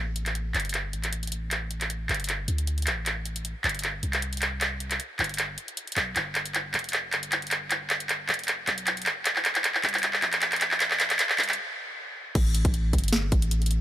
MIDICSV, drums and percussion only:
0, 0, Header, 1, 2, 480
1, 0, Start_track
1, 0, Tempo, 387097
1, 1876, Time_signature, 4, 2, 24, 8
1, 17123, End_track
2, 0, Start_track
2, 0, Title_t, "Drums"
2, 196, Note_on_c, 9, 42, 69
2, 320, Note_off_c, 9, 42, 0
2, 325, Note_on_c, 9, 39, 43
2, 325, Note_on_c, 9, 42, 70
2, 436, Note_off_c, 9, 42, 0
2, 436, Note_on_c, 9, 42, 76
2, 449, Note_off_c, 9, 39, 0
2, 560, Note_off_c, 9, 42, 0
2, 676, Note_on_c, 9, 39, 52
2, 676, Note_on_c, 9, 42, 50
2, 740, Note_off_c, 9, 42, 0
2, 740, Note_on_c, 9, 42, 70
2, 800, Note_off_c, 9, 39, 0
2, 804, Note_off_c, 9, 42, 0
2, 804, Note_on_c, 9, 42, 50
2, 861, Note_off_c, 9, 42, 0
2, 861, Note_on_c, 9, 42, 65
2, 916, Note_off_c, 9, 42, 0
2, 916, Note_on_c, 9, 39, 48
2, 916, Note_on_c, 9, 42, 79
2, 1040, Note_off_c, 9, 39, 0
2, 1040, Note_off_c, 9, 42, 0
2, 1156, Note_on_c, 9, 42, 65
2, 1280, Note_off_c, 9, 42, 0
2, 1284, Note_on_c, 9, 39, 44
2, 1284, Note_on_c, 9, 42, 67
2, 1396, Note_off_c, 9, 42, 0
2, 1396, Note_on_c, 9, 42, 83
2, 1408, Note_off_c, 9, 39, 0
2, 1520, Note_off_c, 9, 42, 0
2, 1524, Note_on_c, 9, 42, 49
2, 1580, Note_off_c, 9, 42, 0
2, 1580, Note_on_c, 9, 42, 67
2, 1636, Note_off_c, 9, 42, 0
2, 1636, Note_on_c, 9, 42, 71
2, 1760, Note_off_c, 9, 42, 0
2, 1876, Note_on_c, 9, 39, 51
2, 1876, Note_on_c, 9, 42, 82
2, 2000, Note_off_c, 9, 39, 0
2, 2000, Note_off_c, 9, 42, 0
2, 2116, Note_on_c, 9, 42, 67
2, 2240, Note_off_c, 9, 42, 0
2, 2244, Note_on_c, 9, 39, 48
2, 2244, Note_on_c, 9, 42, 67
2, 2356, Note_off_c, 9, 42, 0
2, 2356, Note_on_c, 9, 42, 81
2, 2368, Note_off_c, 9, 39, 0
2, 2480, Note_off_c, 9, 42, 0
2, 2596, Note_on_c, 9, 39, 54
2, 2596, Note_on_c, 9, 42, 52
2, 2660, Note_off_c, 9, 42, 0
2, 2660, Note_on_c, 9, 42, 68
2, 2720, Note_off_c, 9, 39, 0
2, 2724, Note_off_c, 9, 42, 0
2, 2724, Note_on_c, 9, 42, 50
2, 2780, Note_off_c, 9, 42, 0
2, 2780, Note_on_c, 9, 42, 65
2, 2835, Note_off_c, 9, 42, 0
2, 2835, Note_on_c, 9, 39, 54
2, 2835, Note_on_c, 9, 42, 78
2, 2959, Note_off_c, 9, 39, 0
2, 2959, Note_off_c, 9, 42, 0
2, 3075, Note_on_c, 9, 42, 69
2, 3199, Note_off_c, 9, 42, 0
2, 3204, Note_on_c, 9, 42, 68
2, 3316, Note_off_c, 9, 42, 0
2, 3316, Note_on_c, 9, 42, 84
2, 3440, Note_off_c, 9, 42, 0
2, 3445, Note_on_c, 9, 42, 50
2, 3501, Note_off_c, 9, 42, 0
2, 3501, Note_on_c, 9, 42, 64
2, 3556, Note_off_c, 9, 42, 0
2, 3556, Note_on_c, 9, 39, 60
2, 3556, Note_on_c, 9, 42, 70
2, 3680, Note_off_c, 9, 39, 0
2, 3680, Note_off_c, 9, 42, 0
2, 3796, Note_on_c, 9, 39, 61
2, 3796, Note_on_c, 9, 42, 80
2, 3920, Note_off_c, 9, 39, 0
2, 3920, Note_off_c, 9, 42, 0
2, 4036, Note_on_c, 9, 42, 66
2, 4160, Note_off_c, 9, 42, 0
2, 4165, Note_on_c, 9, 42, 64
2, 4276, Note_off_c, 9, 42, 0
2, 4276, Note_on_c, 9, 42, 80
2, 4400, Note_off_c, 9, 42, 0
2, 4516, Note_on_c, 9, 39, 63
2, 4516, Note_on_c, 9, 42, 52
2, 4581, Note_off_c, 9, 42, 0
2, 4581, Note_on_c, 9, 42, 68
2, 4640, Note_off_c, 9, 39, 0
2, 4645, Note_off_c, 9, 42, 0
2, 4645, Note_on_c, 9, 42, 49
2, 4701, Note_off_c, 9, 42, 0
2, 4701, Note_on_c, 9, 42, 69
2, 4756, Note_off_c, 9, 42, 0
2, 4756, Note_on_c, 9, 39, 58
2, 4756, Note_on_c, 9, 42, 74
2, 4880, Note_off_c, 9, 39, 0
2, 4880, Note_off_c, 9, 42, 0
2, 4996, Note_on_c, 9, 42, 67
2, 5120, Note_off_c, 9, 42, 0
2, 5125, Note_on_c, 9, 39, 55
2, 5125, Note_on_c, 9, 42, 68
2, 5237, Note_off_c, 9, 42, 0
2, 5237, Note_on_c, 9, 42, 78
2, 5249, Note_off_c, 9, 39, 0
2, 5361, Note_off_c, 9, 42, 0
2, 5365, Note_on_c, 9, 42, 51
2, 5421, Note_off_c, 9, 42, 0
2, 5421, Note_on_c, 9, 42, 65
2, 5477, Note_off_c, 9, 42, 0
2, 5477, Note_on_c, 9, 39, 67
2, 5477, Note_on_c, 9, 42, 70
2, 5601, Note_off_c, 9, 39, 0
2, 5601, Note_off_c, 9, 42, 0
2, 5717, Note_on_c, 9, 39, 68
2, 5717, Note_on_c, 9, 42, 80
2, 5841, Note_off_c, 9, 39, 0
2, 5841, Note_off_c, 9, 42, 0
2, 5956, Note_on_c, 9, 42, 65
2, 6080, Note_off_c, 9, 42, 0
2, 6085, Note_on_c, 9, 39, 59
2, 6085, Note_on_c, 9, 42, 64
2, 6197, Note_off_c, 9, 42, 0
2, 6197, Note_on_c, 9, 42, 75
2, 6209, Note_off_c, 9, 39, 0
2, 6321, Note_off_c, 9, 42, 0
2, 6437, Note_on_c, 9, 39, 72
2, 6437, Note_on_c, 9, 42, 49
2, 6501, Note_off_c, 9, 42, 0
2, 6501, Note_on_c, 9, 42, 66
2, 6561, Note_off_c, 9, 39, 0
2, 6565, Note_off_c, 9, 42, 0
2, 6565, Note_on_c, 9, 42, 47
2, 6621, Note_off_c, 9, 42, 0
2, 6621, Note_on_c, 9, 42, 67
2, 6677, Note_off_c, 9, 42, 0
2, 6677, Note_on_c, 9, 39, 66
2, 6677, Note_on_c, 9, 42, 77
2, 6801, Note_off_c, 9, 39, 0
2, 6801, Note_off_c, 9, 42, 0
2, 6916, Note_on_c, 9, 42, 67
2, 7040, Note_off_c, 9, 42, 0
2, 7045, Note_on_c, 9, 42, 64
2, 7157, Note_off_c, 9, 42, 0
2, 7157, Note_on_c, 9, 42, 76
2, 7281, Note_off_c, 9, 42, 0
2, 7284, Note_on_c, 9, 42, 45
2, 7341, Note_off_c, 9, 42, 0
2, 7341, Note_on_c, 9, 42, 63
2, 7397, Note_off_c, 9, 42, 0
2, 7397, Note_on_c, 9, 39, 77
2, 7397, Note_on_c, 9, 42, 68
2, 7521, Note_off_c, 9, 39, 0
2, 7521, Note_off_c, 9, 42, 0
2, 7636, Note_on_c, 9, 39, 74
2, 7636, Note_on_c, 9, 42, 72
2, 7760, Note_off_c, 9, 39, 0
2, 7760, Note_off_c, 9, 42, 0
2, 7876, Note_on_c, 9, 39, 77
2, 7876, Note_on_c, 9, 42, 62
2, 8000, Note_off_c, 9, 39, 0
2, 8000, Note_off_c, 9, 42, 0
2, 8004, Note_on_c, 9, 42, 62
2, 8117, Note_off_c, 9, 42, 0
2, 8117, Note_on_c, 9, 39, 76
2, 8117, Note_on_c, 9, 42, 78
2, 8241, Note_off_c, 9, 39, 0
2, 8241, Note_off_c, 9, 42, 0
2, 8356, Note_on_c, 9, 39, 80
2, 8356, Note_on_c, 9, 42, 48
2, 8420, Note_off_c, 9, 42, 0
2, 8420, Note_on_c, 9, 42, 64
2, 8480, Note_off_c, 9, 39, 0
2, 8484, Note_off_c, 9, 42, 0
2, 8484, Note_on_c, 9, 42, 47
2, 8540, Note_off_c, 9, 42, 0
2, 8540, Note_on_c, 9, 42, 63
2, 8596, Note_off_c, 9, 42, 0
2, 8596, Note_on_c, 9, 39, 75
2, 8596, Note_on_c, 9, 42, 72
2, 8720, Note_off_c, 9, 39, 0
2, 8720, Note_off_c, 9, 42, 0
2, 8836, Note_on_c, 9, 39, 78
2, 8836, Note_on_c, 9, 42, 62
2, 8960, Note_off_c, 9, 39, 0
2, 8960, Note_off_c, 9, 42, 0
2, 8964, Note_on_c, 9, 42, 62
2, 9076, Note_off_c, 9, 42, 0
2, 9076, Note_on_c, 9, 39, 83
2, 9076, Note_on_c, 9, 42, 76
2, 9200, Note_off_c, 9, 39, 0
2, 9200, Note_off_c, 9, 42, 0
2, 9204, Note_on_c, 9, 42, 45
2, 9260, Note_off_c, 9, 42, 0
2, 9260, Note_on_c, 9, 42, 58
2, 9316, Note_off_c, 9, 42, 0
2, 9316, Note_on_c, 9, 39, 83
2, 9316, Note_on_c, 9, 42, 64
2, 9440, Note_off_c, 9, 39, 0
2, 9440, Note_off_c, 9, 42, 0
2, 9556, Note_on_c, 9, 39, 81
2, 9556, Note_on_c, 9, 42, 73
2, 9680, Note_off_c, 9, 39, 0
2, 9680, Note_off_c, 9, 42, 0
2, 9796, Note_on_c, 9, 39, 87
2, 9796, Note_on_c, 9, 42, 64
2, 9920, Note_off_c, 9, 39, 0
2, 9920, Note_off_c, 9, 42, 0
2, 9924, Note_on_c, 9, 42, 64
2, 10036, Note_off_c, 9, 42, 0
2, 10036, Note_on_c, 9, 39, 80
2, 10036, Note_on_c, 9, 42, 73
2, 10160, Note_off_c, 9, 39, 0
2, 10160, Note_off_c, 9, 42, 0
2, 10276, Note_on_c, 9, 39, 90
2, 10276, Note_on_c, 9, 42, 49
2, 10340, Note_off_c, 9, 42, 0
2, 10340, Note_on_c, 9, 42, 61
2, 10400, Note_off_c, 9, 39, 0
2, 10405, Note_off_c, 9, 42, 0
2, 10405, Note_on_c, 9, 42, 47
2, 10460, Note_off_c, 9, 42, 0
2, 10460, Note_on_c, 9, 42, 61
2, 10516, Note_off_c, 9, 42, 0
2, 10516, Note_on_c, 9, 39, 84
2, 10516, Note_on_c, 9, 42, 71
2, 10640, Note_off_c, 9, 39, 0
2, 10640, Note_off_c, 9, 42, 0
2, 10756, Note_on_c, 9, 39, 83
2, 10756, Note_on_c, 9, 42, 61
2, 10880, Note_off_c, 9, 39, 0
2, 10880, Note_off_c, 9, 42, 0
2, 10884, Note_on_c, 9, 42, 64
2, 10996, Note_off_c, 9, 42, 0
2, 10996, Note_on_c, 9, 39, 93
2, 10996, Note_on_c, 9, 42, 79
2, 11120, Note_off_c, 9, 39, 0
2, 11120, Note_off_c, 9, 42, 0
2, 11124, Note_on_c, 9, 42, 47
2, 11180, Note_off_c, 9, 42, 0
2, 11180, Note_on_c, 9, 42, 59
2, 11236, Note_off_c, 9, 42, 0
2, 11236, Note_on_c, 9, 39, 93
2, 11236, Note_on_c, 9, 42, 66
2, 11360, Note_off_c, 9, 39, 0
2, 11360, Note_off_c, 9, 42, 0
2, 11476, Note_on_c, 9, 39, 91
2, 11476, Note_on_c, 9, 42, 77
2, 11600, Note_off_c, 9, 39, 0
2, 11600, Note_off_c, 9, 42, 0
2, 11604, Note_on_c, 9, 39, 81
2, 11716, Note_off_c, 9, 39, 0
2, 11716, Note_on_c, 9, 39, 94
2, 11716, Note_on_c, 9, 42, 66
2, 11840, Note_off_c, 9, 39, 0
2, 11840, Note_off_c, 9, 42, 0
2, 11844, Note_on_c, 9, 39, 84
2, 11844, Note_on_c, 9, 42, 65
2, 11956, Note_off_c, 9, 39, 0
2, 11956, Note_off_c, 9, 42, 0
2, 11956, Note_on_c, 9, 39, 95
2, 11956, Note_on_c, 9, 42, 81
2, 12080, Note_off_c, 9, 39, 0
2, 12080, Note_off_c, 9, 42, 0
2, 12084, Note_on_c, 9, 39, 83
2, 12196, Note_off_c, 9, 39, 0
2, 12196, Note_on_c, 9, 39, 103
2, 12196, Note_on_c, 9, 42, 47
2, 12260, Note_off_c, 9, 42, 0
2, 12260, Note_on_c, 9, 42, 66
2, 12320, Note_off_c, 9, 39, 0
2, 12325, Note_off_c, 9, 42, 0
2, 12325, Note_on_c, 9, 39, 85
2, 12325, Note_on_c, 9, 42, 49
2, 12381, Note_off_c, 9, 42, 0
2, 12381, Note_on_c, 9, 42, 61
2, 12437, Note_off_c, 9, 39, 0
2, 12437, Note_off_c, 9, 42, 0
2, 12437, Note_on_c, 9, 39, 97
2, 12437, Note_on_c, 9, 42, 77
2, 12561, Note_off_c, 9, 39, 0
2, 12561, Note_off_c, 9, 42, 0
2, 12565, Note_on_c, 9, 39, 85
2, 12677, Note_off_c, 9, 39, 0
2, 12677, Note_on_c, 9, 39, 102
2, 12677, Note_on_c, 9, 42, 63
2, 12801, Note_off_c, 9, 39, 0
2, 12801, Note_off_c, 9, 42, 0
2, 12805, Note_on_c, 9, 39, 92
2, 12805, Note_on_c, 9, 42, 67
2, 12916, Note_off_c, 9, 39, 0
2, 12916, Note_off_c, 9, 42, 0
2, 12916, Note_on_c, 9, 39, 103
2, 12916, Note_on_c, 9, 42, 79
2, 13040, Note_off_c, 9, 39, 0
2, 13040, Note_off_c, 9, 42, 0
2, 13044, Note_on_c, 9, 39, 85
2, 13044, Note_on_c, 9, 42, 49
2, 13100, Note_off_c, 9, 42, 0
2, 13100, Note_on_c, 9, 42, 64
2, 13156, Note_off_c, 9, 39, 0
2, 13156, Note_off_c, 9, 42, 0
2, 13156, Note_on_c, 9, 39, 109
2, 13156, Note_on_c, 9, 42, 68
2, 13280, Note_off_c, 9, 39, 0
2, 13280, Note_off_c, 9, 42, 0
2, 13284, Note_on_c, 9, 39, 99
2, 13396, Note_off_c, 9, 39, 0
2, 13396, Note_on_c, 9, 39, 101
2, 13396, Note_on_c, 9, 42, 82
2, 13520, Note_off_c, 9, 39, 0
2, 13520, Note_off_c, 9, 42, 0
2, 13525, Note_on_c, 9, 39, 89
2, 13636, Note_off_c, 9, 39, 0
2, 13636, Note_on_c, 9, 39, 103
2, 13636, Note_on_c, 9, 42, 68
2, 13760, Note_off_c, 9, 39, 0
2, 13760, Note_off_c, 9, 42, 0
2, 13765, Note_on_c, 9, 39, 90
2, 13765, Note_on_c, 9, 42, 70
2, 13876, Note_off_c, 9, 39, 0
2, 13876, Note_off_c, 9, 42, 0
2, 13876, Note_on_c, 9, 39, 106
2, 13876, Note_on_c, 9, 42, 81
2, 14000, Note_off_c, 9, 39, 0
2, 14000, Note_off_c, 9, 42, 0
2, 14004, Note_on_c, 9, 39, 90
2, 14116, Note_off_c, 9, 39, 0
2, 14116, Note_on_c, 9, 39, 110
2, 14116, Note_on_c, 9, 42, 52
2, 14180, Note_off_c, 9, 42, 0
2, 14180, Note_on_c, 9, 42, 68
2, 14240, Note_off_c, 9, 39, 0
2, 14244, Note_off_c, 9, 42, 0
2, 14244, Note_on_c, 9, 39, 100
2, 14244, Note_on_c, 9, 42, 52
2, 14300, Note_off_c, 9, 42, 0
2, 14300, Note_on_c, 9, 42, 67
2, 14368, Note_off_c, 9, 39, 0
2, 14424, Note_off_c, 9, 42, 0
2, 15316, Note_on_c, 9, 36, 119
2, 15316, Note_on_c, 9, 42, 83
2, 15316, Note_on_c, 9, 49, 107
2, 15440, Note_off_c, 9, 36, 0
2, 15440, Note_off_c, 9, 42, 0
2, 15440, Note_off_c, 9, 49, 0
2, 15556, Note_on_c, 9, 42, 72
2, 15680, Note_off_c, 9, 42, 0
2, 15685, Note_on_c, 9, 36, 106
2, 15685, Note_on_c, 9, 42, 71
2, 15796, Note_off_c, 9, 42, 0
2, 15796, Note_on_c, 9, 42, 82
2, 15809, Note_off_c, 9, 36, 0
2, 15920, Note_off_c, 9, 42, 0
2, 16036, Note_on_c, 9, 42, 53
2, 16037, Note_on_c, 9, 36, 64
2, 16101, Note_off_c, 9, 42, 0
2, 16101, Note_on_c, 9, 42, 69
2, 16161, Note_off_c, 9, 36, 0
2, 16165, Note_off_c, 9, 42, 0
2, 16165, Note_on_c, 9, 42, 53
2, 16220, Note_off_c, 9, 42, 0
2, 16220, Note_on_c, 9, 42, 71
2, 16276, Note_off_c, 9, 42, 0
2, 16276, Note_on_c, 9, 38, 119
2, 16276, Note_on_c, 9, 42, 77
2, 16400, Note_off_c, 9, 38, 0
2, 16400, Note_off_c, 9, 42, 0
2, 16516, Note_on_c, 9, 42, 70
2, 16517, Note_on_c, 9, 36, 108
2, 16640, Note_off_c, 9, 42, 0
2, 16641, Note_off_c, 9, 36, 0
2, 16645, Note_on_c, 9, 42, 70
2, 16756, Note_off_c, 9, 42, 0
2, 16756, Note_on_c, 9, 42, 87
2, 16880, Note_off_c, 9, 42, 0
2, 16885, Note_on_c, 9, 42, 48
2, 16940, Note_off_c, 9, 42, 0
2, 16940, Note_on_c, 9, 42, 66
2, 16996, Note_off_c, 9, 42, 0
2, 16996, Note_on_c, 9, 42, 70
2, 17120, Note_off_c, 9, 42, 0
2, 17123, End_track
0, 0, End_of_file